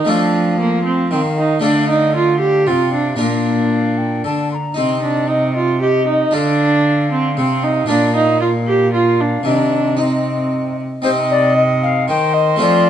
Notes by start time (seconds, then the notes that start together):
Already playing: D#4
0.05 F3 A3 C4 F4 F5
0.09 D4
0.60 A#3
0.85 C4
1.11 D#3 C4 G5
1.16 F5
1.38 D#4
1.60 D3 A3 D4 F4 F5
1.90 D#4
2.15 F4 F5
2.40 G4
2.66 C3 F4 G5
2.71 F5
2.93 D4
3.16 A#2 A#3 D4 F4 F5
3.72 F5
3.98 G5
4.24 D3 A5
4.51 A#5 C6
4.74 C3 C4 D#4 D#5
5.03 D4
5.29 D#4 D#5
5.56 F4
5.81 G4 D#5
6.07 D#4
6.31 D3 D4 F4 F5
7.12 C4
7.37 C3 C4
7.63 D#4
7.86 A#2 A#3 D4 F4
7.90 F5
8.16 D#4
8.41 F4 F5
8.67 G4
8.93 F4 F5
9.20 D4
9.43 C3 D#3 D4 D#5
9.97 C4 D#4 D#5
11.02 C3 C4 D#4 C5 D#5
11.31 D5
11.56 D#5
11.83 F5
12.08 D#3 C5 G5
12.34 D#5
12.56 F3 A3 C4 F4
12.61 F3 D5